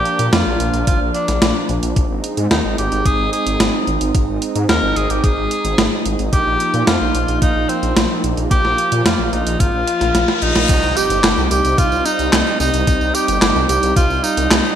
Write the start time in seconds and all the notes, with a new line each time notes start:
Already playing: F3 A#3 D4 G4
0.05 closed hi-hat
0.19 A#2, closed hi-hat
0.33 F2 F4, snare, closed hi-hat
0.46 A#1
0.60 A#1, closed hi-hat
0.74 A#1, closed hi-hat
0.87 G#1 F4, kick, closed hi-hat
1.01 A#1
1.15 D4, closed hi-hat
1.28 A#1, snare, closed hi-hat
1.42 A#1, snare, closed hi-hat
1.69 A#1, closed hi-hat
1.83 A#1, closed hi-hat
1.96 G#1 G#3 C4 D#4, kick, closed hi-hat
2.10 G#1
2.24 closed hi-hat
2.37 G#2, closed hi-hat
2.51 D#2 D#4, snare, closed hi-hat
2.65 G#1
2.78 G#1 G4, closed hi-hat
2.92 G#1, closed hi-hat
3.05 G#1 G#4, kick, closed hi-hat
3.19 G#1
3.33 G#4, closed hi-hat
3.46 G#1, closed hi-hat
3.60 G#1, snare, closed hi-hat
3.87 G#1, closed hi-hat
4.01 G#1, closed hi-hat
4.15 G#1, kick, closed hi-hat
4.28 G#1
4.42 closed hi-hat
4.55 G#2, closed hi-hat
4.69 D#2 A#4, snare, closed hi-hat
4.83 G#1
4.96 G#1 G#4, closed hi-hat
5.10 G#1 G4, closed hi-hat
5.24 G#1 G#4, kick, closed hi-hat
5.37 G#1
5.51 closed hi-hat
5.65 G#1, closed hi-hat
5.78 G#1, snare, closed hi-hat
6.05 G#1, closed hi-hat
6.19 G#1, closed hi-hat
6.33 A#1 F3 A#3 G4, kick, closed hi-hat
6.46 A#1
6.60 closed hi-hat
6.74 A#2, closed hi-hat
6.87 F2 F4, snare, closed hi-hat
7.01 A#1
7.14 A#1, closed hi-hat
7.28 A#1, closed hi-hat
7.42 A#1 D#4, kick, closed hi-hat
7.55 A#1
7.69 C4, closed hi-hat
7.83 A#1, closed hi-hat
7.96 A#1, snare, closed hi-hat
8.24 A#1, closed hi-hat
8.37 A#1, closed hi-hat
8.51 A#1 F4 G4, kick, closed hi-hat
8.65 A#1, snare
8.78 closed hi-hat
8.92 A#2, closed hi-hat
9.05 F2 F4, snare, closed hi-hat
9.19 A#1
9.33 A#1 D#4, closed hi-hat
9.46 A#1, closed hi-hat
9.60 G#1 F4, kick, closed hi-hat, reverse cymbal
9.74 A#1
9.88 closed hi-hat
10.01 A#1, snare, closed hi-hat
10.15 A#1, snare, closed hi-hat
10.28 snare
10.35 F4
10.42 A#1 D#4, closed hi-hat
10.56 A#1, snare, closed hi-hat
10.69 C2 G3 C4 D#4, kick, closed hi-hat, tambourine, crash, impact
10.83 C2, tambourine
10.97 G4, closed hi-hat, tambourine
11.10 G1, closed hi-hat, tambourine
11.24 G1, snare, clap, closed hi-hat, tambourine
11.37 C2, tambourine
11.51 C2 G4, closed hi-hat, tambourine
11.65 C2, closed hi-hat, tambourine
11.78 C2 F4, kick, closed hi-hat, tambourine
11.92 C2, tambourine
12.06 D#4, closed hi-hat, tambourine
12.19 C2, closed hi-hat, tambourine
12.33 C2, snare, clap, closed hi-hat, tambourine
12.46 tambourine
12.60 C2 D#4, open hi-hat, tambourine
12.74 C2, closed hi-hat, tambourine
12.87 C2, kick, closed hi-hat, tambourine
13.01 C2, tambourine
13.14 G4, closed hi-hat, tambourine
13.28 G1, closed hi-hat, tambourine
13.42 G1, snare, clap, closed hi-hat, tambourine
13.55 C2, tambourine
13.69 C2 G4, closed hi-hat, tambourine
13.83 C2, closed hi-hat, tambourine
13.96 C2 F4, kick, closed hi-hat, tambourine
14.10 C2, tambourine
14.23 D#4, closed hi-hat, tambourine
14.37 C2, closed hi-hat, tambourine
14.51 C2, snare, clap, closed hi-hat, tambourine
14.65 tambourine